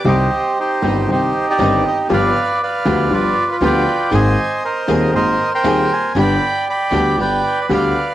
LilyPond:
<<
  \new Staff \with { instrumentName = "Bandoneon" } { \time 4/4 \key c \minor \tempo 4 = 118 << { ees''4 c''4 c''8. d''8. ees''8 | f''4 f''4 d''8. b'16 g''4 | aes''4 ees''4 ees''8. g''8. aes''8 | b''4 b''4 g''8. d''16 f''4 | } \\ { <g' c''>4 <ees' g'>4 <ees' g'>8. g'4~ g'16 | <b' d''>4 <b' d''>4 <f' b'>4 <b' d''>4 | <c'' ees''>4 <bes' c''>4 <bes' c''>8. <bes' c''>4~ <bes' c''>16 | <d'' g''>4 <d'' g''>4 <b' d''>4 <b' d''>4 | } >> }
  \new Staff \with { instrumentName = "String section" } { \time 4/4 \key c \minor <g c' ees'>8 r4 <g c' ees'>8 <g c' ees'>8 r8 <g c' ees'>8 r8 | <g b f'>8 r4 <g b f'>8 <g b f'>8 r8 <g b f'>8 r8 | <bes c' aes'>8 r4 <bes c' aes'>8 <bes c' aes'>8 r8 <bes c' aes'>8 r8 | <b d' g'>8 r4 <b d' g'>8 <b d' g'>8 r8 <b d' g'>8 r8 | }
  \new Staff \with { instrumentName = "Upright piano" } { \clef bass \time 4/4 \key c \minor <c, c ees g c' g'>8 r4 <g,, g, ees g c' g'>8 <c, c ees g c' g'>8 r8 <g,, g, ees g c' g'>8 r8 | <g,, g, f b d' g'>8 r4 <d, d f b d' g'>8 <g,, g, f b d' g'>8 r8 <d, d f b d' g'>8 r8 | <aes,, aes, ees bes c' aes'>8 r4 <ees,, ees, ees bes c' aes'>8 <aes,, aes, ees bes c' aes'>8 r8 <ees,, ees, ees bes c' aes'>8 r8 | <g,, g, d g b g'>8 r4 <d, d g b g'>8 <g,, g, d g b g'>8 r8 <d, d g b g'>8 r8 | }
  \new Staff \with { instrumentName = "Upright bass" } { \clef bass \time 4/4 \key c \minor c,8 r4 g,,8 c,8 r8 g,,8 r8 | g,,8 r4 d,8 g,,8 r8 d,8 r8 | aes,,8 r4 ees,8 aes,,8 r8 ees,8 r8 | g,,8 r4 d,8 g,,8 r8 d,8 r8 | }
>>